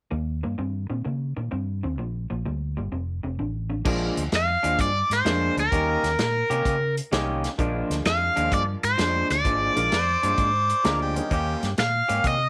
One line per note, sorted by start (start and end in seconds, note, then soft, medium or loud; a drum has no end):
0.11 0.43 D#2 medium
0.11 0.40 D#3 medium
0.11 0.40 A#3 medium
0.43 0.58 G2 medium
0.43 0.57 D#3 medium
0.43 0.57 A#3 medium
0.58 0.89 G2 medium
0.58 0.87 D#3 medium
0.58 0.87 C4 medium
0.90 1.05 A#2 medium
0.90 1.04 D#3 medium
0.90 1.04 C4 medium
1.05 1.36 C#3 medium
1.05 1.33 D#3 medium
1.05 1.34 A#3 medium
1.37 1.52 A#2 medium
1.37 1.50 D#3 medium
1.37 1.50 A#3 medium
1.51 1.83 G2 medium
1.51 1.80 D#3 medium
1.51 1.80 C4 medium
1.83 1.99 D#2 medium
1.83 1.97 D#3 medium
1.83 1.97 C4 medium
1.98 2.30 A#1 medium
1.98 2.27 A#2 medium
1.98 2.27 F3 medium
2.30 2.45 A#1 medium
2.30 2.44 A#2 medium
2.30 2.44 F3 medium
2.46 2.76 D2 medium
2.46 2.74 A#2 medium
2.46 2.74 G3 medium
2.77 2.92 G1 medium
2.77 2.91 A#2 medium
2.77 2.91 G3 medium
2.92 3.23 F1 medium
2.92 3.21 F2 medium
2.92 3.21 C3 medium
3.23 3.38 F1 medium
3.23 3.37 F2 medium
3.23 3.37 C3 medium
3.39 3.84 A1 medium
3.39 3.67 F2 medium
3.39 3.68 D3 medium
3.70 3.84 F2 medium
3.70 3.84 D3 medium
3.85 4.09 A#1 medium
3.85 4.21 A#2 medium
3.85 4.14 F3 medium
3.85 4.22 F3 medium
3.85 4.14 G#3 medium
3.85 4.22 G#3 loud
3.85 4.14 A#3 medium
3.85 4.14 D4 medium
3.85 4.22 D4 loud
3.85 4.14 F4 medium
3.85 kick loud
3.85 crash medium
4.17 4.28 D2 medium
4.17 closed hi-hat medium
4.32 4.55 F2 medium
4.32 snare loud
4.32 closed hi-hat medium
4.36 4.81 F5 loud
4.63 4.75 D#2 medium
4.63 4.89 A#2 medium
4.63 4.88 F3 medium
4.63 4.88 G#3 medium
4.63 4.88 D4 medium
4.63 closed hi-hat medium
4.79 5.02 G2 medium
4.79 5.13 D5 medium
4.79 kick loud
4.79 closed hi-hat medium
5.10 5.21 G#2 medium
5.10 5.55 C5 medium
5.10 snare soft
5.10 closed hi-hat medium
5.25 5.48 F2 medium
5.25 5.61 A#2 medium
5.25 5.54 F3 medium
5.25 5.62 F3 medium
5.25 5.54 G#3 medium
5.25 5.62 G#3 medium
5.25 5.54 A#3 medium
5.25 5.54 D4 medium
5.25 5.62 D4 medium
5.25 5.54 F4 medium
5.25 snare loud
5.25 closed hi-hat medium
5.57 5.68 D2 loud
5.57 6.94 A#4 medium
5.57 closed hi-hat medium
5.71 5.95 D#2 medium
5.71 6.00 D#3 medium
5.71 6.08 D#3 medium
5.71 6.00 G3 medium
5.71 6.08 A#3 medium
5.71 6.00 A#3 medium
5.71 6.08 C#4 medium
5.71 6.01 C#4 medium
5.71 6.01 D#4 medium
5.71 6.08 G4 medium
5.71 kick loud
5.71 closed hi-hat medium
6.03 6.15 D#2 medium
6.03 snare soft
6.03 closed hi-hat medium
6.19 6.42 A#2 medium
6.19 snare loud
6.19 closed hi-hat medium
6.50 6.61 C3 medium
6.50 6.75 D#3 medium
6.50 6.75 A#3 medium
6.50 6.75 C#4 medium
6.50 6.75 G4 medium
6.50 closed hi-hat medium
6.65 6.99 C#3 medium
6.65 kick loud
6.65 closed hi-hat medium
6.97 closed hi-hat medium
7.12 7.46 C2 medium
7.12 7.48 D#3 medium
7.12 7.40 D#3 medium
7.12 7.41 G3 medium
7.12 7.41 A#3 medium
7.12 7.48 A#3 medium
7.12 7.41 C#4 medium
7.12 7.49 C#4 medium
7.12 7.41 D#4 medium
7.12 7.49 G4 loud
7.12 snare loud
7.12 closed hi-hat medium
7.44 snare soft
7.44 closed hi-hat medium
7.58 7.82 A#1 medium
7.58 7.95 A#2 medium
7.58 8.89 F3 medium
7.58 7.95 F3 medium
7.58 8.89 G#3 medium
7.58 7.95 G#3 medium
7.58 8.89 A#3 medium
7.58 8.90 D4 medium
7.58 7.95 D4 loud
7.58 8.90 F4 medium
7.58 kick loud
7.58 closed hi-hat medium
7.90 8.01 D2 medium
7.90 snare soft
7.90 closed hi-hat medium
8.05 8.28 F2 medium
8.05 8.54 F5 loud
8.05 snare loud
8.05 closed hi-hat medium
8.36 8.48 D#2 medium
8.36 8.62 A#2 medium
8.36 8.61 F3 medium
8.36 8.61 G#3 medium
8.36 8.61 D4 medium
8.36 closed hi-hat medium
8.52 8.75 G2 medium
8.52 8.62 D5 medium
8.52 kick loud
8.52 closed hi-hat medium
8.83 8.95 G#2 medium
8.83 9.27 C5 medium
8.83 closed hi-hat medium
8.98 9.22 F2 medium
8.98 9.34 A#2 medium
8.98 9.34 F3 medium
8.98 9.35 G#3 medium
8.98 9.35 D4 loud
8.98 snare loud
8.98 closed hi-hat medium
9.30 9.41 D2 medium
9.30 11.13 D5 medium
9.30 snare soft
9.30 closed hi-hat medium
9.44 9.68 G#1 medium
9.44 9.81 A#2 medium
9.44 9.81 F3 medium
9.44 9.81 G#3 loud
9.44 9.81 D4 medium
9.44 kick medium
9.44 closed hi-hat medium
9.76 9.88 A#1 medium
9.76 9.90 F3 medium
9.76 9.90 G#3 medium
9.76 9.90 A#3 medium
9.76 9.90 D4 medium
9.76 9.90 F4 medium
9.76 closed hi-hat medium
9.92 10.15 F2 medium
9.92 10.22 C5 loud
9.92 snare loud
9.92 closed hi-hat medium
10.23 10.34 G2 medium
10.23 10.48 A#2 medium
10.23 10.48 F3 medium
10.23 10.48 G#3 medium
10.23 10.48 D4 medium
10.23 10.88 C5 medium
10.23 closed hi-hat medium
10.38 10.72 G#2 medium
10.38 kick loud
10.38 closed hi-hat medium
10.70 closed hi-hat medium
10.84 11.19 D2 medium
10.84 11.21 A#2 medium
10.84 11.21 F3 medium
10.84 11.21 G#3 medium
10.84 11.21 D4 medium
10.84 11.01 A#4 medium
10.84 snare loud
10.84 closed hi-hat medium
11.02 11.31 G4 medium
11.15 11.29 D#3 medium
11.15 11.30 G3 medium
11.15 11.30 A#3 medium
11.15 11.30 C#4 medium
11.15 11.30 D#4 medium
11.15 closed hi-hat medium
11.31 11.54 D#2 medium
11.31 11.67 D#3 medium
11.31 11.68 A#3 loud
11.31 11.68 C#4 medium
11.31 11.68 G4 medium
11.31 11.70 G4 loud
11.31 kick loud
11.31 closed hi-hat medium
11.63 11.74 G2 medium
11.63 snare soft
11.63 closed hi-hat medium
11.78 12.01 A#2 medium
11.78 12.27 F5 loud
11.78 snare loud
11.78 closed hi-hat medium
12.08 12.21 G#2 medium
12.08 12.34 D#3 medium
12.08 12.34 A#3 medium
12.08 12.34 C#4 medium
12.08 12.34 G4 medium
12.08 closed hi-hat medium
12.24 12.47 C3 medium
12.24 12.49 D#5 loud
12.24 kick loud
12.24 closed hi-hat medium